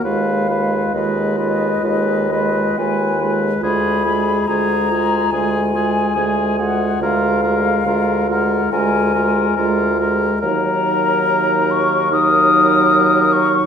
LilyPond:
<<
  \new Staff \with { instrumentName = "Flute" } { \time 4/4 \key ees \minor \tempo 4 = 70 f''4 ees''2 aes''8 r8 | b''4 bes''4 aes''4. ges''8 | f''4. ges''8 aes''4 r4 | bes''4. des'''8 ees'''4. des'''8 | }
  \new Staff \with { instrumentName = "Oboe" } { \time 4/4 \key ees \minor ces''8 ces''8 ces''8 ces''8 ces''8 ces''8 ces''8 ces''8 | aes'8 aes'8 aes'8 aes'8 aes'8 aes'8 aes'8 aes'8 | bes'8 bes'8 bes'8 bes'8 bes'8 bes'8 bes'8 bes'8 | bes'2 bes'2 | }
  \new Staff \with { instrumentName = "Clarinet" } { \time 4/4 \key ees \minor f'8 f'8 f'8 f'8 f'8 f'8 f'8 f'8 | f'8 f'8 f'8 f'8 f'8 f'8 f'8 f'8 | f'8 f'8 f'8 f'8 f'8 f'8 f'8 f'8 | ees'2 ees'2 | }
  \new Staff \with { instrumentName = "French horn" } { \clef bass \time 4/4 \key ees \minor aes8 aes8 aes8 aes8 aes8 aes8 aes8 aes8 | aes8 aes8 aes8 aes8 aes8 aes8 aes8 aes8 | aes8 aes8 aes8 aes8 aes8 aes8 aes8 aes8 | ges2 ges2 | }
  \new Staff \with { instrumentName = "Bassoon" } { \clef bass \time 4/4 \key ees \minor ees,4 ees,4 ees,4 ees,4 | d,4 d,4 d,4 d,4 | d,4 d,4 d,4 d,4 | ees,1 | }
>>